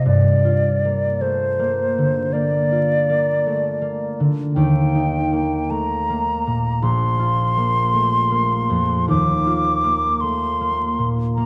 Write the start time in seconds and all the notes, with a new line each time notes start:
Already playing: F4
0.06 G2 D5
0.45 F4
0.85 A#3
1.21 A3 C5
1.59 A#3
1.98 D3
2.33 A#3 D5
2.72 F4
3.10 A#3
3.46 A3
3.82 A#3
4.20 D3
4.55 D#2 G5
4.95 D#4
5.33 A#3
5.70 A3 A#5
6.10 A#3
6.47 A#2
6.82 A#1 C6
7.19 F4
7.57 A#3
7.94 A3
8.31 A#3
8.70 F2
9.08 D#2 D6
9.47 F4
9.84 A#3
10.21 A3 C6
10.61 A#3
10.98 A#2
11.35 A#3 A#5